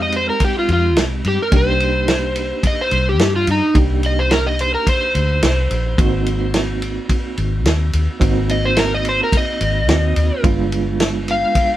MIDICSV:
0, 0, Header, 1, 5, 480
1, 0, Start_track
1, 0, Key_signature, -3, "minor"
1, 0, Tempo, 557103
1, 1313, Time_signature, 4, 2, 24, 8
1, 10139, End_track
2, 0, Start_track
2, 0, Title_t, "Electric slide guitar"
2, 0, Program_c, 0, 29
2, 21, Note_on_c, 0, 75, 91
2, 122, Note_off_c, 0, 75, 0
2, 139, Note_on_c, 0, 72, 90
2, 245, Note_off_c, 0, 72, 0
2, 255, Note_on_c, 0, 70, 86
2, 360, Note_off_c, 0, 70, 0
2, 383, Note_on_c, 0, 67, 72
2, 487, Note_off_c, 0, 67, 0
2, 507, Note_on_c, 0, 65, 80
2, 606, Note_off_c, 0, 65, 0
2, 625, Note_on_c, 0, 65, 92
2, 842, Note_off_c, 0, 65, 0
2, 1100, Note_on_c, 0, 67, 103
2, 1205, Note_off_c, 0, 67, 0
2, 1227, Note_on_c, 0, 70, 80
2, 1326, Note_off_c, 0, 70, 0
2, 1348, Note_on_c, 0, 72, 88
2, 2263, Note_off_c, 0, 72, 0
2, 2301, Note_on_c, 0, 75, 82
2, 2406, Note_off_c, 0, 75, 0
2, 2424, Note_on_c, 0, 72, 91
2, 2643, Note_off_c, 0, 72, 0
2, 2662, Note_on_c, 0, 67, 75
2, 2882, Note_off_c, 0, 67, 0
2, 2896, Note_on_c, 0, 65, 75
2, 3001, Note_off_c, 0, 65, 0
2, 3026, Note_on_c, 0, 63, 86
2, 3244, Note_off_c, 0, 63, 0
2, 3499, Note_on_c, 0, 75, 98
2, 3606, Note_off_c, 0, 75, 0
2, 3611, Note_on_c, 0, 72, 92
2, 3719, Note_off_c, 0, 72, 0
2, 3725, Note_on_c, 0, 70, 91
2, 3839, Note_off_c, 0, 70, 0
2, 3848, Note_on_c, 0, 75, 93
2, 3957, Note_off_c, 0, 75, 0
2, 3970, Note_on_c, 0, 72, 88
2, 4081, Note_off_c, 0, 72, 0
2, 4088, Note_on_c, 0, 70, 76
2, 4198, Note_off_c, 0, 70, 0
2, 4212, Note_on_c, 0, 72, 90
2, 5610, Note_off_c, 0, 72, 0
2, 7333, Note_on_c, 0, 75, 100
2, 7444, Note_off_c, 0, 75, 0
2, 7456, Note_on_c, 0, 72, 88
2, 7562, Note_off_c, 0, 72, 0
2, 7571, Note_on_c, 0, 70, 81
2, 7683, Note_off_c, 0, 70, 0
2, 7706, Note_on_c, 0, 75, 89
2, 7808, Note_off_c, 0, 75, 0
2, 7829, Note_on_c, 0, 72, 80
2, 7932, Note_off_c, 0, 72, 0
2, 7957, Note_on_c, 0, 70, 76
2, 8053, Note_off_c, 0, 70, 0
2, 8074, Note_on_c, 0, 75, 96
2, 8987, Note_off_c, 0, 75, 0
2, 9743, Note_on_c, 0, 77, 97
2, 10139, Note_off_c, 0, 77, 0
2, 10139, End_track
3, 0, Start_track
3, 0, Title_t, "Reed electric piano"
3, 0, Program_c, 1, 4
3, 0, Note_on_c, 1, 56, 71
3, 0, Note_on_c, 1, 60, 70
3, 0, Note_on_c, 1, 63, 69
3, 0, Note_on_c, 1, 67, 83
3, 1274, Note_off_c, 1, 56, 0
3, 1276, Note_off_c, 1, 60, 0
3, 1279, Note_off_c, 1, 63, 0
3, 1281, Note_off_c, 1, 67, 0
3, 1304, Note_on_c, 1, 58, 72
3, 1309, Note_on_c, 1, 62, 61
3, 1310, Note_on_c, 1, 63, 55
3, 1315, Note_on_c, 1, 67, 76
3, 3196, Note_off_c, 1, 58, 0
3, 3198, Note_off_c, 1, 62, 0
3, 3199, Note_off_c, 1, 63, 0
3, 3202, Note_off_c, 1, 67, 0
3, 3223, Note_on_c, 1, 58, 63
3, 3229, Note_on_c, 1, 62, 63
3, 3233, Note_on_c, 1, 63, 55
3, 3236, Note_on_c, 1, 67, 70
3, 5116, Note_off_c, 1, 58, 0
3, 5120, Note_off_c, 1, 62, 0
3, 5122, Note_off_c, 1, 63, 0
3, 5123, Note_off_c, 1, 67, 0
3, 5148, Note_on_c, 1, 58, 72
3, 5150, Note_on_c, 1, 60, 64
3, 5152, Note_on_c, 1, 63, 70
3, 5156, Note_on_c, 1, 66, 89
3, 7038, Note_off_c, 1, 58, 0
3, 7040, Note_off_c, 1, 60, 0
3, 7041, Note_off_c, 1, 63, 0
3, 7043, Note_off_c, 1, 66, 0
3, 7063, Note_on_c, 1, 58, 82
3, 7068, Note_on_c, 1, 60, 69
3, 7069, Note_on_c, 1, 63, 76
3, 7075, Note_on_c, 1, 66, 82
3, 8480, Note_off_c, 1, 58, 0
3, 8483, Note_off_c, 1, 60, 0
3, 8484, Note_off_c, 1, 63, 0
3, 8487, Note_off_c, 1, 66, 0
3, 8507, Note_on_c, 1, 58, 42
3, 8510, Note_on_c, 1, 60, 40
3, 8514, Note_on_c, 1, 63, 41
3, 8515, Note_on_c, 1, 66, 50
3, 8987, Note_on_c, 1, 56, 72
3, 8989, Note_on_c, 1, 59, 70
3, 8992, Note_off_c, 1, 58, 0
3, 8993, Note_off_c, 1, 60, 0
3, 8995, Note_off_c, 1, 63, 0
3, 8995, Note_off_c, 1, 66, 0
3, 8996, Note_on_c, 1, 62, 72
3, 8997, Note_on_c, 1, 65, 91
3, 10139, Note_off_c, 1, 56, 0
3, 10139, Note_off_c, 1, 59, 0
3, 10139, Note_off_c, 1, 62, 0
3, 10139, Note_off_c, 1, 65, 0
3, 10139, End_track
4, 0, Start_track
4, 0, Title_t, "Fingered electric bass"
4, 0, Program_c, 2, 33
4, 0, Note_on_c, 2, 41, 95
4, 245, Note_off_c, 2, 41, 0
4, 591, Note_on_c, 2, 41, 89
4, 832, Note_off_c, 2, 41, 0
4, 832, Note_on_c, 2, 36, 115
4, 1046, Note_off_c, 2, 36, 0
4, 1075, Note_on_c, 2, 43, 80
4, 1183, Note_off_c, 2, 43, 0
4, 1312, Note_on_c, 2, 36, 104
4, 2167, Note_off_c, 2, 36, 0
4, 2514, Note_on_c, 2, 36, 84
4, 2754, Note_off_c, 2, 36, 0
4, 2754, Note_on_c, 2, 43, 120
4, 2968, Note_off_c, 2, 43, 0
4, 2994, Note_on_c, 2, 43, 84
4, 3103, Note_off_c, 2, 43, 0
4, 3233, Note_on_c, 2, 36, 105
4, 4088, Note_off_c, 2, 36, 0
4, 4437, Note_on_c, 2, 38, 82
4, 4653, Note_off_c, 2, 38, 0
4, 4678, Note_on_c, 2, 36, 96
4, 4894, Note_off_c, 2, 36, 0
4, 4920, Note_on_c, 2, 34, 86
4, 5135, Note_off_c, 2, 34, 0
4, 5158, Note_on_c, 2, 32, 100
4, 6011, Note_off_c, 2, 32, 0
4, 6358, Note_on_c, 2, 32, 84
4, 6597, Note_off_c, 2, 32, 0
4, 6597, Note_on_c, 2, 39, 113
4, 6811, Note_off_c, 2, 39, 0
4, 6839, Note_on_c, 2, 39, 81
4, 6947, Note_off_c, 2, 39, 0
4, 7076, Note_on_c, 2, 32, 107
4, 7930, Note_off_c, 2, 32, 0
4, 8279, Note_on_c, 2, 32, 91
4, 8519, Note_off_c, 2, 32, 0
4, 8519, Note_on_c, 2, 39, 107
4, 8731, Note_off_c, 2, 39, 0
4, 8758, Note_on_c, 2, 39, 88
4, 8866, Note_off_c, 2, 39, 0
4, 8997, Note_on_c, 2, 31, 94
4, 9849, Note_off_c, 2, 31, 0
4, 10139, End_track
5, 0, Start_track
5, 0, Title_t, "Drums"
5, 106, Note_on_c, 9, 51, 59
5, 193, Note_off_c, 9, 51, 0
5, 345, Note_on_c, 9, 51, 85
5, 348, Note_on_c, 9, 36, 91
5, 431, Note_off_c, 9, 51, 0
5, 434, Note_off_c, 9, 36, 0
5, 591, Note_on_c, 9, 51, 54
5, 677, Note_off_c, 9, 51, 0
5, 831, Note_on_c, 9, 51, 78
5, 836, Note_on_c, 9, 38, 125
5, 918, Note_off_c, 9, 51, 0
5, 922, Note_off_c, 9, 38, 0
5, 1073, Note_on_c, 9, 51, 58
5, 1159, Note_off_c, 9, 51, 0
5, 1307, Note_on_c, 9, 51, 84
5, 1309, Note_on_c, 9, 36, 105
5, 1394, Note_off_c, 9, 51, 0
5, 1396, Note_off_c, 9, 36, 0
5, 1553, Note_on_c, 9, 51, 54
5, 1640, Note_off_c, 9, 51, 0
5, 1791, Note_on_c, 9, 51, 78
5, 1795, Note_on_c, 9, 38, 102
5, 1877, Note_off_c, 9, 51, 0
5, 1882, Note_off_c, 9, 38, 0
5, 2029, Note_on_c, 9, 51, 64
5, 2116, Note_off_c, 9, 51, 0
5, 2269, Note_on_c, 9, 36, 86
5, 2270, Note_on_c, 9, 51, 85
5, 2356, Note_off_c, 9, 36, 0
5, 2356, Note_off_c, 9, 51, 0
5, 2509, Note_on_c, 9, 51, 60
5, 2595, Note_off_c, 9, 51, 0
5, 2752, Note_on_c, 9, 51, 80
5, 2756, Note_on_c, 9, 38, 111
5, 2838, Note_off_c, 9, 51, 0
5, 2842, Note_off_c, 9, 38, 0
5, 2991, Note_on_c, 9, 51, 66
5, 3077, Note_off_c, 9, 51, 0
5, 3231, Note_on_c, 9, 36, 100
5, 3231, Note_on_c, 9, 51, 82
5, 3317, Note_off_c, 9, 51, 0
5, 3318, Note_off_c, 9, 36, 0
5, 3472, Note_on_c, 9, 51, 59
5, 3558, Note_off_c, 9, 51, 0
5, 3711, Note_on_c, 9, 51, 85
5, 3716, Note_on_c, 9, 38, 107
5, 3797, Note_off_c, 9, 51, 0
5, 3802, Note_off_c, 9, 38, 0
5, 3955, Note_on_c, 9, 51, 62
5, 4041, Note_off_c, 9, 51, 0
5, 4193, Note_on_c, 9, 36, 84
5, 4195, Note_on_c, 9, 51, 96
5, 4280, Note_off_c, 9, 36, 0
5, 4281, Note_off_c, 9, 51, 0
5, 4436, Note_on_c, 9, 51, 64
5, 4522, Note_off_c, 9, 51, 0
5, 4674, Note_on_c, 9, 51, 92
5, 4679, Note_on_c, 9, 38, 113
5, 4761, Note_off_c, 9, 51, 0
5, 4765, Note_off_c, 9, 38, 0
5, 4916, Note_on_c, 9, 51, 61
5, 5002, Note_off_c, 9, 51, 0
5, 5155, Note_on_c, 9, 36, 111
5, 5158, Note_on_c, 9, 51, 74
5, 5241, Note_off_c, 9, 36, 0
5, 5244, Note_off_c, 9, 51, 0
5, 5397, Note_on_c, 9, 51, 57
5, 5483, Note_off_c, 9, 51, 0
5, 5633, Note_on_c, 9, 51, 84
5, 5637, Note_on_c, 9, 38, 99
5, 5719, Note_off_c, 9, 51, 0
5, 5723, Note_off_c, 9, 38, 0
5, 5876, Note_on_c, 9, 51, 59
5, 5962, Note_off_c, 9, 51, 0
5, 6112, Note_on_c, 9, 36, 80
5, 6112, Note_on_c, 9, 51, 81
5, 6198, Note_off_c, 9, 36, 0
5, 6198, Note_off_c, 9, 51, 0
5, 6354, Note_on_c, 9, 51, 59
5, 6440, Note_off_c, 9, 51, 0
5, 6595, Note_on_c, 9, 51, 82
5, 6600, Note_on_c, 9, 38, 106
5, 6682, Note_off_c, 9, 51, 0
5, 6686, Note_off_c, 9, 38, 0
5, 6835, Note_on_c, 9, 51, 66
5, 6921, Note_off_c, 9, 51, 0
5, 7074, Note_on_c, 9, 36, 106
5, 7076, Note_on_c, 9, 51, 83
5, 7160, Note_off_c, 9, 36, 0
5, 7163, Note_off_c, 9, 51, 0
5, 7318, Note_on_c, 9, 51, 65
5, 7404, Note_off_c, 9, 51, 0
5, 7552, Note_on_c, 9, 51, 93
5, 7556, Note_on_c, 9, 38, 114
5, 7638, Note_off_c, 9, 51, 0
5, 7643, Note_off_c, 9, 38, 0
5, 7795, Note_on_c, 9, 51, 64
5, 7881, Note_off_c, 9, 51, 0
5, 8034, Note_on_c, 9, 36, 90
5, 8037, Note_on_c, 9, 51, 96
5, 8120, Note_off_c, 9, 36, 0
5, 8123, Note_off_c, 9, 51, 0
5, 8276, Note_on_c, 9, 51, 66
5, 8363, Note_off_c, 9, 51, 0
5, 8518, Note_on_c, 9, 51, 79
5, 8522, Note_on_c, 9, 38, 125
5, 8604, Note_off_c, 9, 51, 0
5, 8608, Note_off_c, 9, 38, 0
5, 8755, Note_on_c, 9, 51, 65
5, 8841, Note_off_c, 9, 51, 0
5, 8995, Note_on_c, 9, 36, 120
5, 8996, Note_on_c, 9, 51, 79
5, 9081, Note_off_c, 9, 36, 0
5, 9082, Note_off_c, 9, 51, 0
5, 9238, Note_on_c, 9, 51, 59
5, 9324, Note_off_c, 9, 51, 0
5, 9477, Note_on_c, 9, 51, 82
5, 9481, Note_on_c, 9, 38, 123
5, 9563, Note_off_c, 9, 51, 0
5, 9567, Note_off_c, 9, 38, 0
5, 9718, Note_on_c, 9, 51, 62
5, 9805, Note_off_c, 9, 51, 0
5, 9953, Note_on_c, 9, 51, 90
5, 9954, Note_on_c, 9, 36, 81
5, 10039, Note_off_c, 9, 51, 0
5, 10040, Note_off_c, 9, 36, 0
5, 10139, End_track
0, 0, End_of_file